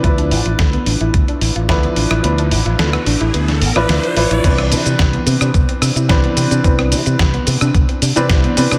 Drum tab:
CC |----------------|----------------|x---------------|----------------|
HH |xxoxxxoxxxoxxxox|xxoxxxoxxxoxxxox|xxoxxxoxxxoxxxox|xxoxxxoxxxoxxxox|
SH |----------------|----------------|x-xxx-xxx-xxx-xx|x-xxx-xxx-xxx-xx|
SD |----o-------o--r|----or---o-ro---|-r--o--r--r-o---|-r--o--r----o--r|
BD |o---o---o---o---|----------------|o---o---o---o---|o---o---o---o---|